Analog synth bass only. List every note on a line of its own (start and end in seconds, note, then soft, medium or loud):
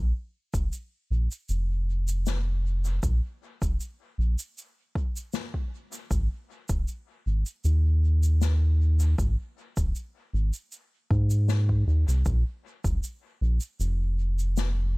0.00 0.13 A#1 medium
0.54 0.70 F1 medium
1.10 1.28 A#1 medium
1.49 2.99 F1 loud
3.03 3.21 A#1 medium
3.62 3.78 F1 medium
4.18 4.36 A#1 medium
6.11 6.28 G#1 loud
6.69 6.85 D#1 medium
7.26 7.44 G#1 medium
7.65 9.15 D#2 loud
9.18 9.36 G#1 medium
9.77 9.93 D#1 medium
10.33 10.51 G#1 medium
11.11 11.84 G#2 loud
11.87 12.05 D#2 medium
12.08 12.24 C2 medium
12.26 12.44 A#1 medium
12.85 13.01 F1 medium
13.41 13.59 A#1 medium
13.80 14.98 F1 loud